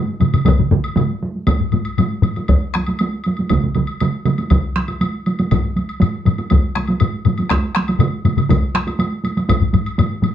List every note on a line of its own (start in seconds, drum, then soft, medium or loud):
0.07 taiko high soft
0.20 taiko low-mid medium
0.20 taiko mid medium
0.20 taiko high medium
0.20 high woodblock soft
0.34 taiko low-mid medium
0.34 taiko mid medium
0.34 high woodblock soft
0.45 taiko loud
0.45 taiko low-mid medium
0.45 taiko mid loud
0.45 taiko high medium
0.45 high woodblock medium
0.58 taiko low-mid medium
0.58 taiko mid medium
0.58 taiko high soft
0.71 taiko low-mid loud
0.71 taiko mid loud
0.71 taiko high medium
0.84 high woodblock soft
0.96 taiko low-mid loud
0.96 taiko mid medium
0.96 taiko high medium
0.96 high woodblock soft
1.09 taiko high soft
1.23 taiko high medium
1.35 taiko high soft
1.47 taiko medium
1.47 taiko low-mid medium
1.47 taiko high medium
1.47 high woodblock soft
1.60 taiko low-mid medium
1.72 taiko low-mid medium
1.72 taiko high medium
1.72 high woodblock soft
1.85 high woodblock soft
1.98 taiko low-mid medium
1.98 taiko high medium
1.98 high woodblock soft
2.22 taiko low-mid medium
2.22 taiko high soft
2.22 high woodblock soft
2.36 taiko high soft
2.36 high woodblock soft
2.48 taiko loud
2.48 taiko low-mid medium
2.48 taiko high medium
2.48 high woodblock soft
2.74 taiko rim medium
2.74 taiko high soft
2.74 high woodblock soft
2.87 taiko high soft
2.87 high woodblock soft
2.99 taiko high medium
2.99 high woodblock soft
3.24 taiko high soft
3.24 high woodblock soft
3.37 taiko high soft
3.37 high woodblock soft
3.49 taiko loud
3.49 taiko mid medium
3.49 taiko high medium
3.49 high woodblock soft
3.64 taiko mid medium
3.75 taiko mid medium
3.75 taiko high soft
3.75 high woodblock soft
3.87 high woodblock soft
4.00 taiko mid medium
4.00 taiko high medium
4.00 high woodblock soft
4.25 taiko mid medium
4.25 taiko high soft
4.25 high woodblock soft
4.38 taiko high medium
4.38 high woodblock soft
4.50 taiko medium
4.50 taiko mid medium
4.50 taiko high medium
4.50 high woodblock soft
4.76 taiko rim medium
4.76 taiko high medium
4.76 high woodblock soft
4.88 taiko high medium
4.88 high woodblock soft
5.01 taiko high medium
5.01 high woodblock soft
5.26 taiko high medium
5.26 high woodblock soft
5.39 taiko high medium
5.39 high woodblock soft
5.51 taiko medium
5.51 taiko low-mid medium
5.51 taiko high medium
5.51 high woodblock soft
5.76 taiko high medium
5.76 high woodblock soft
5.89 high woodblock soft
6.00 taiko low-mid medium
6.00 taiko high medium
6.00 high woodblock soft
6.26 taiko low-mid medium
6.26 taiko high medium
6.26 high woodblock soft
6.38 taiko high soft
6.38 high woodblock soft
6.50 taiko medium
6.50 taiko low-mid medium
6.50 taiko high medium
6.50 high woodblock soft
6.75 taiko rim medium
6.75 taiko high medium
6.75 high woodblock soft
6.88 taiko high medium
6.88 high woodblock soft
7.00 taiko low-mid medium
7.00 taiko high medium
7.00 high woodblock soft
7.25 taiko low-mid medium
7.25 taiko high medium
7.25 high woodblock soft
7.38 taiko high medium
7.38 high woodblock soft
7.50 taiko rim medium
7.50 taiko medium
7.50 taiko high medium
7.50 high woodblock soft
7.75 taiko rim medium
7.75 taiko high medium
7.75 high woodblock soft
7.88 taiko high soft
7.88 high woodblock soft
7.99 taiko low-mid loud
7.99 taiko mid medium
7.99 taiko high medium
7.99 high woodblock soft
8.24 taiko low-mid medium
8.24 taiko mid medium
8.24 taiko high medium
8.24 high woodblock soft
8.37 taiko low-mid medium
8.37 taiko mid medium
8.37 high woodblock soft
8.49 taiko loud
8.49 taiko low-mid medium
8.49 taiko mid medium
8.49 taiko high medium
8.49 high woodblock soft
8.74 taiko rim medium
8.74 taiko high medium
8.74 high woodblock soft
8.87 taiko high medium
8.87 high woodblock soft
8.99 taiko high medium
8.99 high woodblock soft
9.24 taiko high medium
9.24 high woodblock soft
9.37 taiko high medium
9.37 high woodblock soft
9.49 taiko medium
9.49 taiko low-mid medium
9.49 taiko high medium
9.49 high woodblock medium
9.62 taiko low-mid medium
9.73 taiko low-mid medium
9.73 taiko high medium
9.73 high woodblock soft
9.86 high woodblock soft
9.98 taiko low-mid medium
9.98 taiko high medium
9.98 high woodblock medium
10.22 taiko low-mid medium
10.22 taiko high medium
10.22 high woodblock soft